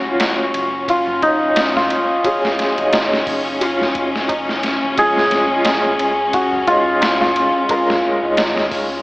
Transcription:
0.00 0.51 D#1 loud
0.00 0.06 F#3 medium
0.00 0.07 C#4 medium
0.00 9.02 C#4 medium
0.00 0.96 F#4 loud
0.00 4.98 F5 medium
0.06 1.19 F#3 medium
0.06 1.19 C#4 medium
0.06 1.20 F4 medium
0.20 snare loud
0.20 ride medium
0.20 tabla na medium
0.54 2.06 F#1 loud
0.54 ride medium
0.88 1.76 F4 medium
0.88 kick loud
0.88 ride medium
1.08 tabla ge medium
1.22 2.20 F#3 medium
1.22 2.21 C#4 medium
1.22 4.83 D#4 loud
1.22 2.22 D#4 medium
1.22 kick loud
1.22 ride medium
1.56 snare loud
1.56 ride loud
1.56 tabla na medium
1.75 5.13 F4 medium
1.75 snare medium
1.75 tabla ge medium
1.90 ride medium
2.24 2.73 F#3 medium
2.24 2.74 C#4 medium
2.24 2.74 G#4 medium
2.24 kick loud
2.24 ride medium
2.44 snare medium
2.44 tabla ge medium
2.59 snare soft
2.59 ride medium
2.78 2.94 F1 medium
2.78 3.57 F#3 medium
2.78 3.58 C#4 medium
2.78 3.58 D#4 loud
2.78 ride soft
2.93 3.23 G#1 loud
2.93 snare loud
2.93 ride medium
2.93 tabla na medium
3.14 snare medium
3.27 4.79 F#1 loud
3.27 kick loud
3.27 open hi-hat medium
3.61 4.93 F#3 medium
3.61 4.94 C#4 medium
3.61 4.95 F4 loud
3.61 ride medium
3.81 snare soft
3.81 tabla ge medium
3.95 kick loud
3.95 ride medium
4.16 snare soft
4.29 kick loud
4.29 ride medium
4.29 tabla na medium
4.49 snare soft
4.63 snare soft
4.63 ride medium
4.83 4.96 D#1 loud
4.97 5.97 A#1 medium
4.97 5.46 G#3 medium
4.97 5.47 C#4 medium
4.97 5.47 F4 medium
4.97 8.02 G#4 loud
4.97 kick loud
4.97 ride medium
5.17 snare soft
5.17 tabla ge medium
5.31 snare soft
5.31 ride medium
5.51 6.64 G#3 medium
5.51 6.65 C#4 medium
5.51 6.65 F4 medium
5.65 snare loud
5.65 ride medium
5.65 tabla na medium
5.99 7.52 C#2 loud
5.99 ride medium
6.33 6.73 F#4 medium
6.33 kick loud
6.33 ride medium
6.53 tabla ge medium
6.67 7.66 G#3 medium
6.67 7.66 C#4 medium
6.67 7.67 D#4 medium
6.67 7.21 F4 loud
6.67 kick loud
6.67 ride medium
7.01 snare loud
7.01 ride medium
7.01 tabla na medium
7.21 9.02 F4 medium
7.21 snare soft
7.21 tabla ge medium
7.36 ride medium
7.69 8.18 G#3 medium
7.69 8.19 C#4 medium
7.69 8.19 A#4 medium
7.69 kick loud
7.69 ride loud
7.90 snare medium
7.90 tabla ge medium
8.22 8.40 C#2 medium
8.22 9.02 G#3 medium
8.22 9.02 C#4 medium
8.22 9.02 D#4 loud
8.37 8.69 D#2 loud
8.37 snare loud
8.37 ride medium
8.37 tabla na medium
8.57 snare medium
8.71 9.02 C#2 loud
8.71 kick loud
8.71 open hi-hat medium

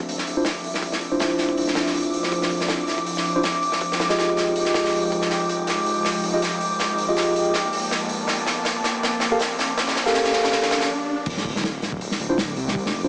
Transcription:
0.00 0.17 D1 medium
0.00 10.85 F3 medium
0.00 3.77 C4 medium
0.00 3.77 D4 medium
0.00 3.77 E5 medium
0.00 10.89 D6 medium
0.00 riser medium
0.09 open hi-hat medium
0.18 snare soft
0.27 0.63 D1 medium
0.27 open hi-hat medium
0.37 0.43 D4 medium
0.37 0.43 E4 medium
0.37 0.43 F4 medium
0.37 0.43 C5 loud
0.45 snare loud
0.45 open hi-hat medium
0.64 0.91 C2 medium
0.64 open hi-hat medium
0.74 snare soft
0.83 kick loud
0.83 open hi-hat medium
0.92 1.59 F1 medium
0.92 snare soft
1.01 open hi-hat medium
1.12 3.33 D4 medium
1.12 3.33 E4 medium
1.12 3.33 F4 medium
1.12 3.33 C5 medium
1.20 snare loud
1.20 open hi-hat medium
1.30 kick medium
1.38 snare soft
1.38 open hi-hat medium
1.49 kick medium
1.57 2.06 A1 loud
1.57 open hi-hat medium
1.67 snare soft
1.75 snare loud
1.75 open hi-hat medium
1.86 snare soft
1.94 open hi-hat medium
2.05 2.31 D1 loud
2.14 open hi-hat medium
2.23 snare soft
2.32 3.15 D1 loud
2.32 kick loud
2.32 open hi-hat medium
2.42 snare soft
2.50 kick medium
2.50 open hi-hat medium
2.61 snare soft
2.68 snare loud
2.68 open hi-hat medium
2.87 snare soft
2.87 open hi-hat medium
2.98 kick medium
3.06 open hi-hat medium
3.17 snare soft
3.25 3.61 D1 medium
3.25 open hi-hat medium
3.36 3.42 D4 medium
3.36 3.42 E4 medium
3.36 3.42 F4 medium
3.36 3.42 C5 loud
3.43 snare loud
3.43 open hi-hat medium
3.63 3.90 F1 medium
3.63 open hi-hat medium
3.72 snare soft
3.81 7.50 G#3 medium
3.81 7.50 D#4 medium
3.81 10.85 G5 medium
3.81 kick loud
3.81 open hi-hat medium
3.91 4.57 G#1 medium
3.91 snare medium
3.99 snare loud
3.99 open hi-hat medium
4.09 6.31 F4 medium
4.09 6.31 G4 medium
4.09 6.31 G#4 medium
4.09 6.31 D#5 loud
4.09 snare loud
4.09 open hi-hat medium
4.18 snare loud
4.18 open hi-hat medium
4.29 kick medium
4.37 snare soft
4.37 open hi-hat medium
4.47 kick medium
4.56 4.74 C2 loud
4.56 open hi-hat medium
4.65 snare soft
4.74 4.91 G#1 medium
4.74 snare loud
4.74 open hi-hat medium
4.85 snare soft
4.93 5.29 F1 loud
4.93 open hi-hat medium
5.12 kick medium
5.12 open hi-hat medium
5.21 snare soft
5.30 6.13 F1 loud
5.30 snare soft
5.30 open hi-hat medium
5.49 open hi-hat medium
5.67 snare medium
5.67 open hi-hat medium
5.86 open hi-hat medium
6.05 snare medium
6.05 open hi-hat medium
6.23 6.59 F1 medium
6.23 open hi-hat medium
6.34 6.40 F4 medium
6.34 6.40 G4 medium
6.34 6.40 G#4 medium
6.34 6.40 D#5 loud
6.42 snare soft
6.42 open hi-hat medium
6.61 6.88 D#1 medium
6.61 open hi-hat medium
6.80 snare medium
6.80 open hi-hat medium
6.90 7.55 G#1 medium
6.98 open hi-hat medium
7.08 7.53 F4 medium
7.08 7.53 G4 medium
7.08 7.53 G#4 medium
7.08 7.53 D#5 medium
7.17 snare medium
7.17 open hi-hat medium
7.36 open hi-hat medium
7.54 7.81 G1 loud
7.54 10.86 A#3 medium
7.54 10.86 A5 medium
7.54 snare medium
7.54 open hi-hat medium
7.73 open hi-hat medium
7.91 snare medium
7.91 open hi-hat medium
8.01 8.27 G1 loud
8.09 open hi-hat medium
8.28 9.11 G1 loud
8.28 snare medium
8.28 open hi-hat medium
8.46 snare medium
8.46 open hi-hat medium
8.65 snare medium
8.65 open hi-hat medium
8.84 snare medium
8.84 open hi-hat medium
9.03 snare medium
9.03 open hi-hat medium
9.20 9.58 G1 medium
9.20 snare medium
9.20 open hi-hat medium
9.31 9.38 G4 loud
9.31 9.38 A4 medium
9.31 9.38 A#4 medium
9.31 9.38 F5 loud
9.39 snare medium
9.39 open hi-hat medium
9.59 9.86 F1 medium
9.59 snare medium
9.59 open hi-hat medium
9.78 snare loud
9.78 open hi-hat medium
9.87 10.51 A#1 medium
9.87 snare medium
9.96 snare loud
9.96 open hi-hat medium
10.06 10.89 G4 medium
10.06 10.89 A4 medium
10.06 10.89 A#4 medium
10.06 10.89 F5 loud
10.06 snare medium
10.14 snare loud
10.14 open hi-hat medium
10.24 snare medium
10.33 snare medium
10.33 open hi-hat medium
10.44 snare medium
10.52 snare medium
10.52 open hi-hat medium
10.52 swell medium
10.62 snare loud
10.71 snare loud
10.71 open hi-hat medium
10.80 snare loud
11.26 12.10 D1 loud
11.26 13.08 D6 medium
11.26 kick loud
11.26 open hi-hat medium
11.26 crash loud
11.37 snare soft
11.45 kick loud
11.45 open hi-hat medium
11.56 snare medium
11.64 snare loud
11.64 open hi-hat medium
11.82 snare soft
11.82 open hi-hat medium
11.92 kick medium
12.01 open hi-hat loud
12.11 snare soft
12.20 12.56 D1 medium
12.20 open hi-hat medium
12.30 12.36 D4 loud
12.30 12.36 E4 medium
12.30 12.36 F4 medium
12.30 12.36 C5 loud
12.38 snare loud
12.38 open hi-hat medium
12.56 12.84 C2 medium
12.56 open hi-hat medium
12.68 snare soft
12.75 kick loud
12.75 open hi-hat medium
12.86 13.08 F1 medium
12.86 snare medium
12.95 open hi-hat medium
13.04 13.08 D4 medium
13.04 13.08 E4 medium
13.04 13.08 F4 medium
13.04 13.08 C5 medium

